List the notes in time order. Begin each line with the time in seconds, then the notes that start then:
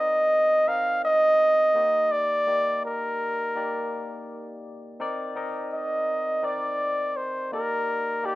Already playing: C4 D#4 A#4 D5 D#5
0.68 C4 D#4 A#4 D#5 F5
1.04 D#5
1.75 A#3 D#4 G4 C5
1.83 D#5
2.11 D5
2.47 A#3 D#4 G4 D5
2.85 A#4
3.55 A#3 D#4 G4 D5
5.00 C4 D#4 A#4 D5
5.35 C4 D#4 A#4 D#5
5.72 D#5
6.43 C4 D#4 A#4 D5
7.16 C5
7.52 A#3 D#4 G4 A#4 D5
8.23 A#3 D#4 G4 D5